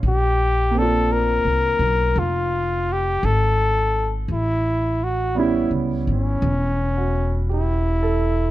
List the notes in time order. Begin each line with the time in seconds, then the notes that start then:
0.03 A#1
0.08 G4
0.71 A#3 C4
0.78 D4 F4 A4
1.12 A#4
1.45 C2
1.79 B1
2.16 F1 F4
2.92 G4
3.23 G#1 A4
4.28 A1
4.33 E4
5.04 F#4
5.35 G3 B3 C#4 E4
5.39 E4
5.71 C#2
6.07 G#1
6.13 C#4
6.42 E1
6.97 F#4
7.49 G4
7.54 E4
8.03 A4